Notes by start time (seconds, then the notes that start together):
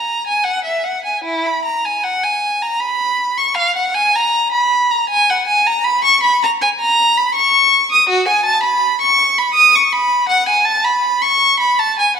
Already playing: A#5
0.27 G#5
0.44 F#5
0.64 E5
0.84 F#5
1.05 G#5
1.24 E4
1.46 B5
1.65 A#5
1.85 G#5
2.04 F#5
2.23 G#5
2.62 A#5
2.80 B5
3.37 C#6
3.55 F5
3.76 F#5
3.94 G#5
4.15 A#5
4.52 B5
4.91 A#5
5.10 G#5
5.30 F#5
5.47 G#5
5.67 A#5
5.84 B5
6.05 C#6
6.23 B5
6.43 A#5
6.62 G#5
6.80 A#5
7.17 B5
7.35 C#6
7.92 D#6
8.09 F#4
8.28 G#5
8.46 A5
8.63 B5
9.02 C#6
9.39 B5
9.54 D#6
9.75 C#6
9.93 B5
10.29 F#5
10.49 G#5
10.65 A5
10.84 B5
11.22 C#6
11.60 B5
11.79 A5
11.99 G#5
12.17 F#5